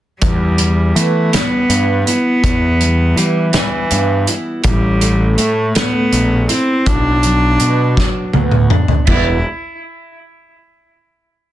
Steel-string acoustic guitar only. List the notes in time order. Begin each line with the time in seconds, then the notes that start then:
0.22 E3
0.59 G3
0.95 B3
1.33 G3
1.70 B3
2.08 E4
2.44 E3
2.81 G3
3.18 B3
3.55 G3
3.91 B3
4.28 E4
4.64 A2
5.02 A3
5.75 A3
6.49 E4
6.87 B2
7.25 F#3
7.61 B3
7.97 F#3
8.34 B3
8.71 D4
9.07 E3 G3 B3 E4